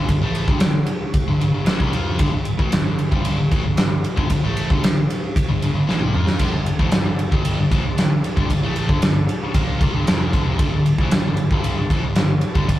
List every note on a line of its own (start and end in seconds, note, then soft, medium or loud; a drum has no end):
0.09 0.20 G1 medium
0.09 0.22 G2 medium
0.09 0.21 D3 medium
0.09 kick loud
0.09 ride medium
0.21 0.46 A1 medium
0.21 0.48 A2 medium
0.21 0.48 E3 loud
0.21 0.48 A3 loud
0.35 ride medium
0.47 0.60 G1 medium
0.47 0.60 G2 medium
0.47 0.60 D3 medium
0.47 kick loud
0.60 0.86 G1 medium
0.60 0.83 G2 medium
0.60 0.83 D3 medium
0.60 snare loud
0.60 ride loud
0.86 ride medium
1.14 kick loud
1.14 ride medium
1.27 1.40 G1 medium
1.27 1.39 G2 medium
1.27 1.40 D3 medium
1.41 1.53 G1 medium
1.41 1.53 G2 medium
1.41 1.53 D3 medium
1.41 ride medium
1.54 1.66 G1 medium
1.54 1.67 G2 medium
1.54 1.67 D3 medium
1.66 1.79 A1 medium
1.66 1.80 A2 medium
1.66 1.80 E3 medium
1.66 snare loud
1.66 ride medium
1.80 1.92 C2 loud
1.80 1.93 C3 medium
1.80 1.93 G3 loud
1.80 kick medium
1.93 2.19 F2 medium
1.93 2.19 F3 medium
1.93 2.19 C4 medium
1.93 2.19 F4 medium
1.93 ride medium
2.19 2.32 G1 medium
2.19 2.31 G2 medium
2.19 2.32 D3 loud
2.19 kick loud
2.19 ride medium
2.33 2.58 G1 medium
2.33 2.54 G2 medium
2.33 2.54 D3 medium
2.45 ride medium
2.59 2.71 A1 medium
2.59 2.72 A2 medium
2.59 2.72 E3 medium
2.59 kick loud
2.72 2.85 G1 medium
2.72 2.86 G2 medium
2.72 2.86 D3 medium
2.72 snare loud
2.72 ride loud
2.84 3.10 G1 medium
2.84 3.07 G2 medium
2.84 3.06 D3 medium
2.88 3.08 D3 medium
2.99 ride medium
3.11 3.36 G1 loud
3.11 3.37 G2 loud
3.11 3.37 D3 loud
3.11 3.38 G3 loud
3.11 kick loud
3.25 ride loud
3.38 3.51 G1 medium
3.38 3.51 G2 medium
3.38 3.51 D3 medium
3.51 3.64 A1 medium
3.51 3.64 A2 medium
3.51 3.64 E3 medium
3.51 kick loud
3.51 ride medium
3.65 3.77 G1 medium
3.65 3.76 G2 medium
3.65 3.77 D3 medium
3.77 4.02 G1 medium
3.77 3.99 G2 medium
3.77 3.99 D3 medium
3.77 snare loud
3.77 ride medium
4.04 ride medium
4.16 4.30 G1 medium
4.16 4.29 G2 medium
4.16 4.29 D3 medium
4.16 kick medium
4.30 4.43 G1 medium
4.30 4.43 G2 medium
4.30 4.43 D3 medium
4.30 kick medium
4.30 ride loud
4.43 4.68 A1 medium
4.43 4.69 A2 medium
4.43 4.69 E3 medium
4.43 4.69 A3 loud
4.57 ride medium
4.70 4.81 G1 medium
4.70 4.82 G2 medium
4.70 4.82 D3 medium
4.70 kick loud
4.82 5.06 G1 medium
4.82 5.04 G2 medium
4.82 5.04 D3 medium
4.82 snare loud
4.82 ride loud
5.10 ride medium
5.36 kick loud
5.36 ride loud
5.48 5.60 G1 medium
5.48 5.61 G2 medium
5.48 5.61 D3 medium
5.62 5.74 G1 medium
5.62 5.73 G2 medium
5.62 5.73 D3 medium
5.62 ride medium
5.74 5.87 G1 medium
5.74 5.87 G2 medium
5.74 5.87 D3 medium
5.87 6.00 A1 medium
5.87 6.00 A2 medium
5.87 6.00 E3 medium
5.87 snare medium
6.00 6.13 C2 loud
6.00 6.13 C3 medium
6.00 6.13 G3 loud
6.00 mid tom medium
6.14 6.39 F2 medium
6.14 6.39 F3 medium
6.14 6.40 C4 medium
6.14 6.40 F4 medium
6.14 mid tom medium
6.27 snare medium
6.39 6.52 G1 medium
6.39 6.53 G2 medium
6.39 6.53 D3 medium
6.39 12.79 G3 medium
6.39 12.79 D4 medium
6.39 12.79 A4 medium
6.39 kick medium
6.39 ride medium
6.39 crash loud
6.54 6.78 G1 medium
6.54 6.74 G2 medium
6.54 6.75 D3 medium
6.66 ride medium
6.79 6.92 A1 medium
6.79 6.92 A2 medium
6.79 6.92 E3 medium
6.79 kick loud
6.92 7.05 G1 medium
6.92 7.05 G2 medium
6.92 7.05 D3 medium
6.92 snare loud
6.92 ride medium
7.06 7.30 G1 medium
7.06 7.27 G2 medium
7.06 7.27 D3 medium
7.19 ride medium
7.31 7.56 G1 medium
7.31 7.57 G2 medium
7.31 7.57 D3 loud
7.31 7.58 G3 medium
7.31 kick loud
7.45 ride loud
7.58 7.70 G1 medium
7.58 7.71 G2 medium
7.58 7.71 D3 medium
7.72 7.83 A1 medium
7.72 7.84 A2 medium
7.72 7.84 E3 loud
7.72 kick loud
7.72 ride medium
7.83 7.96 G1 medium
7.83 7.96 G2 medium
7.83 7.96 D3 medium
7.97 8.21 G1 medium
7.97 8.18 G2 medium
7.97 8.18 D3 medium
7.97 snare loud
7.97 ride medium
8.24 ride medium
8.37 8.49 G1 medium
8.37 8.48 G2 medium
8.37 8.49 D3 medium
8.37 kick loud
8.49 8.61 G1 medium
8.49 8.63 G2 medium
8.49 8.63 D3 medium
8.49 kick medium
8.49 ride medium
8.61 8.87 A1 medium
8.61 8.88 A2 medium
8.61 8.89 E3 medium
8.61 8.89 A3 loud
8.76 ride medium
8.89 9.01 G1 medium
8.89 9.01 G2 medium
8.89 9.01 D3 medium
8.89 kick loud
9.01 9.26 G1 medium
9.01 9.23 G2 medium
9.01 9.23 D3 medium
9.01 snare loud
9.01 ride loud
9.29 ride medium
9.54 9.79 A#1 medium
9.54 9.81 A#2 loud
9.54 9.80 F3 loud
9.54 9.81 A#3 loud
9.54 kick loud
9.54 ride medium
9.81 9.92 C2 medium
9.81 9.94 C3 medium
9.81 9.94 G3 loud
9.81 kick loud
9.81 ride medium
9.93 10.06 G1 medium
9.93 10.07 G2 medium
9.93 10.07 D3 loud
10.06 10.31 F1 medium
10.06 10.32 F2 medium
10.06 10.33 C3 medium
10.06 10.33 F3 loud
10.06 snare loud
10.06 ride medium
10.33 10.45 G1 medium
10.33 10.46 G2 medium
10.33 10.46 D3 medium
10.33 kick medium
10.33 ride medium
10.45 10.58 F1 loud
10.45 10.59 F2 medium
10.45 10.59 C3 medium
10.59 10.72 G1 loud
10.59 10.73 G2 medium
10.59 10.73 D3 loud
10.59 kick loud
10.59 ride medium
10.73 10.97 G1 medium
10.73 10.94 G2 medium
10.73 10.95 D3 medium
10.86 ride medium
10.98 11.11 A1 medium
10.98 11.12 A2 medium
10.98 11.12 E3 medium
10.98 kick medium
11.11 11.24 G1 medium
11.11 11.26 G2 medium
11.11 11.26 D3 medium
11.11 snare loud
11.11 ride loud
11.25 11.49 G1 medium
11.25 11.47 G2 medium
11.25 11.47 D3 medium
11.37 ride medium
11.51 11.75 G1 medium
11.51 11.77 G2 loud
11.51 11.77 D3 loud
11.51 11.77 G3 loud
11.51 kick loud
11.64 ride medium
11.78 11.90 G1 medium
11.78 11.91 G2 medium
11.78 11.91 D3 medium
11.90 12.03 A1 medium
11.90 12.03 A2 medium
11.90 12.04 E3 loud
11.90 kick loud
11.90 ride medium
12.04 12.16 G1 medium
12.04 12.15 G2 medium
12.04 12.16 D3 medium
12.16 12.41 G1 medium
12.16 12.38 G2 medium
12.16 12.38 D3 medium
12.16 snare loud
12.16 ride medium
12.41 ride medium
12.55 12.68 G1 loud
12.55 12.67 G2 medium
12.55 12.68 D3 loud
12.55 kick loud
12.68 12.79 G1 medium
12.68 12.79 G2 medium
12.68 12.79 D3 medium
12.68 kick loud
12.68 ride medium